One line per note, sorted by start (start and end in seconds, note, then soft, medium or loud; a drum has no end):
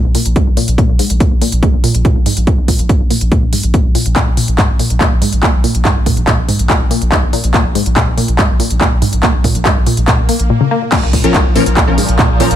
0.04 0.15 A#1 medium
0.15 0.20 A#2 medium
0.15 open hi-hat loud
0.25 0.36 A#1 medium
0.25 closed hi-hat medium
0.36 0.41 G#2 medium
0.36 kick loud
0.36 closed hi-hat medium
0.47 0.57 A#1 medium
0.57 0.62 A#2 medium
0.57 open hi-hat medium
0.68 0.78 A#1 medium
0.68 closed hi-hat medium
0.78 0.83 A#2 medium
0.78 kick loud
0.78 closed hi-hat medium
0.89 0.99 A#1 medium
0.99 1.05 G#2 medium
0.99 open hi-hat loud
1.10 1.20 A#1 medium
1.10 closed hi-hat medium
1.20 1.26 A#2 medium
1.20 kick loud
1.20 closed hi-hat medium
1.31 1.41 A#1 medium
1.41 1.47 A#2 medium
1.41 open hi-hat loud
1.52 1.62 A#1 medium
1.52 closed hi-hat medium
1.63 1.68 G#2 medium
1.63 kick loud
1.63 closed hi-hat medium
1.73 1.84 A#1 medium
1.84 1.89 A#2 medium
1.84 open hi-hat loud
1.94 2.05 A#1 medium
1.94 closed hi-hat medium
2.05 2.10 A#2 medium
2.05 kick loud
2.05 closed hi-hat medium
2.16 2.26 A#1 medium
2.26 2.31 G#2 medium
2.26 open hi-hat loud
2.37 2.47 A#1 medium
2.37 closed hi-hat medium
2.47 2.52 A#2 medium
2.47 kick loud
2.47 closed hi-hat medium
2.58 2.68 A#1 medium
2.68 2.74 A#2 medium
2.68 kick medium
2.68 open hi-hat loud
2.79 2.89 A#1 medium
2.79 closed hi-hat medium
2.89 2.95 G#2 medium
2.89 kick loud
2.89 closed hi-hat medium
3.00 3.10 A#1 medium
3.10 3.16 A#2 medium
3.10 open hi-hat loud
3.21 3.31 A#1 medium
3.21 closed hi-hat medium
3.32 3.37 A#2 medium
3.32 kick loud
3.32 closed hi-hat medium
3.42 3.53 A#1 medium
3.53 3.58 G#2 medium
3.53 open hi-hat loud
3.63 3.74 A#1 medium
3.63 closed hi-hat medium
3.74 3.79 A#2 medium
3.74 kick loud
3.74 closed hi-hat medium
3.85 3.95 A#1 medium
3.95 4.00 A#2 medium
3.95 open hi-hat medium
4.06 4.16 A#1 medium
4.06 closed hi-hat medium
4.16 4.21 A#2 medium
4.16 kick loud
4.16 clap loud
4.16 closed hi-hat medium
4.27 4.37 A#1 medium
4.37 4.43 A#2 medium
4.37 open hi-hat loud
4.48 4.58 A#1 medium
4.48 closed hi-hat medium
4.58 4.64 G#2 medium
4.58 kick loud
4.58 clap loud
4.58 closed hi-hat medium
4.69 4.79 A#1 medium
4.79 4.85 A#2 medium
4.79 open hi-hat medium
4.90 5.00 A#1 medium
4.90 closed hi-hat medium
5.00 5.06 A#2 medium
5.00 kick loud
5.00 clap loud
5.00 closed hi-hat medium
5.11 5.22 A#1 medium
5.22 5.27 G#2 medium
5.22 open hi-hat loud
5.33 5.43 A#1 medium
5.33 closed hi-hat medium
5.43 5.48 A#2 medium
5.43 kick loud
5.43 clap loud
5.43 closed hi-hat medium
5.54 5.64 A#1 medium
5.64 5.69 A#2 medium
5.64 open hi-hat medium
5.75 5.85 A#1 medium
5.75 closed hi-hat medium
5.85 5.90 G#2 medium
5.85 kick loud
5.85 clap loud
5.85 closed hi-hat medium
5.96 6.06 A#1 medium
6.06 6.12 A#2 medium
6.06 kick medium
6.06 open hi-hat loud
6.17 6.27 A#1 medium
6.17 closed hi-hat medium
6.27 6.33 A#2 medium
6.27 kick loud
6.27 clap loud
6.27 closed hi-hat medium
6.38 6.48 A#1 medium
6.49 6.54 G#2 medium
6.49 open hi-hat medium
6.59 6.69 A#1 medium
6.59 closed hi-hat medium
6.70 6.75 A#2 medium
6.70 kick loud
6.70 clap loud
6.70 closed hi-hat medium
6.80 6.91 A#1 medium
6.91 6.96 A#2 medium
6.91 open hi-hat loud
7.01 7.12 A#1 medium
7.01 closed hi-hat medium
7.12 7.17 G#2 medium
7.12 kick loud
7.12 clap loud
7.12 closed hi-hat medium
7.23 7.33 A#1 medium
7.33 7.38 A#2 medium
7.33 open hi-hat medium
7.44 7.54 A#1 medium
7.44 closed hi-hat medium
7.54 7.59 A#2 medium
7.54 kick loud
7.54 clap loud
7.54 closed hi-hat medium
7.65 7.75 A#1 medium
7.75 7.81 G#2 medium
7.75 open hi-hat loud
7.86 7.96 A#1 medium
7.86 closed hi-hat medium
7.96 8.02 A#2 medium
7.96 kick loud
7.96 clap loud
7.96 closed hi-hat medium
8.07 8.17 A#1 medium
8.17 8.23 A#2 medium
8.17 open hi-hat medium
8.28 8.38 A#1 medium
8.28 closed hi-hat medium
8.39 8.44 G#2 medium
8.39 kick loud
8.39 clap loud
8.39 closed hi-hat medium
8.49 8.60 A#1 medium
8.60 8.65 A#2 medium
8.60 open hi-hat loud
8.70 8.81 A#1 medium
8.70 closed hi-hat medium
8.81 8.86 A#2 medium
8.81 kick loud
8.81 clap loud
8.81 closed hi-hat medium
8.92 9.02 A#1 medium
9.02 9.07 G#2 medium
9.02 open hi-hat medium
9.13 9.23 A#1 medium
9.13 closed hi-hat medium
9.23 9.28 A#2 medium
9.23 kick loud
9.23 clap loud
9.23 closed hi-hat medium
9.34 9.44 A#1 medium
9.44 9.50 A#2 medium
9.44 kick medium
9.44 open hi-hat loud
9.55 9.65 A#1 medium
9.55 closed hi-hat medium
9.65 9.71 G#2 medium
9.65 kick loud
9.65 clap loud
9.65 closed hi-hat medium
9.76 9.86 A#1 medium
9.86 9.92 A#2 medium
9.86 open hi-hat medium
9.97 10.07 A#1 medium
9.97 closed hi-hat medium
10.08 10.13 A#2 medium
10.08 kick loud
10.08 clap loud
10.08 closed hi-hat medium
10.08 swell medium
10.18 10.29 A#1 medium
10.29 10.37 A#3 medium
10.29 open hi-hat loud
10.39 10.50 A#1 medium
10.39 closed hi-hat medium
10.50 10.58 A#2 medium
10.61 10.66 C#3 medium
10.71 10.76 A#3 loud
10.92 10.97 A#2 medium
10.92 12.56 A#2 medium
10.92 12.56 F3 medium
10.92 kick loud
10.92 clap loud
10.92 closed hi-hat medium
10.92 crash loud
10.92 impact medium
11.03 11.13 A#1 medium
11.13 11.19 A#2 medium
11.13 kick medium
11.13 open hi-hat loud
11.24 11.34 A#1 medium
11.24 11.35 F3 loud
11.24 11.35 C#4 medium
11.24 11.35 A#4 loud
11.24 closed hi-hat medium
11.34 11.40 G#2 medium
11.34 kick loud
11.34 clap loud
11.34 closed hi-hat medium
11.45 11.55 A#1 medium
11.56 11.61 A#2 medium
11.56 11.62 F3 medium
11.56 11.62 C#4 medium
11.56 11.62 A#4 loud
11.56 open hi-hat medium
11.66 11.76 A#1 medium
11.66 closed hi-hat medium
11.77 11.82 A#2 medium
11.77 kick loud
11.77 clap loud
11.77 closed hi-hat medium
11.87 11.98 A#1 medium
11.87 11.98 F3 medium
11.87 11.98 C#4 medium
11.87 11.98 A#4 medium
11.98 12.03 G#2 medium
11.98 open hi-hat loud
12.08 12.19 A#1 medium
12.08 closed hi-hat medium
12.19 12.24 A#2 medium
12.19 kick loud
12.19 clap loud
12.19 closed hi-hat medium
12.30 12.40 A#1 medium
12.40 12.45 A#2 medium
12.40 12.47 F3 medium
12.40 12.47 C#4 medium
12.40 12.47 A#4 medium
12.40 open hi-hat medium
12.51 12.56 A#1 medium
12.51 closed hi-hat medium